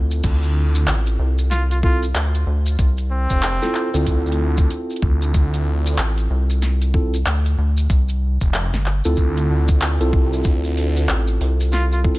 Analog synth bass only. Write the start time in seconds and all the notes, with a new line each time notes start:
Already playing: D2
0.87 A1
1.19 C2
2.14 D2
2.47 D2
2.79 C2
5.98 A1
6.30 C2
7.26 D2
7.58 D2
7.90 C2
8.73 G1
9.06 D2
11.09 A1
11.41 C2